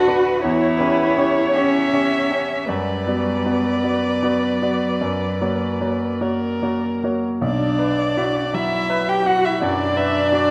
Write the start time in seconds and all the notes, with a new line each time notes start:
Already playing: D2 D4 F#4 B4
0.08 D4 F#4 B4
0.42 E2 E4 C#5
0.78 C#4 G4 B4 C#5
1.17 C#4 G4 C#5
1.53 C#4 G4 C#5 E5
1.93 C#4 G4 C#5
2.30 C#4 G4 C#5
2.66 F#2 G3 B4 D5
3.07 B3 F#4 D5
3.46 B3 F#4 D5
3.83 F#3 B3 F#4 D5
4.23 B3 F#4 D5
4.62 B3 F#4 D5
5.01 F#2
5.41 A#3 F#4 C#5
5.81 A#3 F#4 C#5
6.21 A#3 F#4 A#4 C#5
6.62 A#3 F#4 C#5
7.03 A#3 F#4 C#5
7.41 B1 D4 D5
7.79 B4
8.17 E4 F#4
8.25 D4
8.35 C#4
8.44 D4
8.53 F#3 E4 E5
8.90 B4
9.09 G4 G5
9.26 F#4 F#5
9.45 E4 E5
9.60 F#2 D4 D5
9.96 B4 E5
10.31 F#4 D5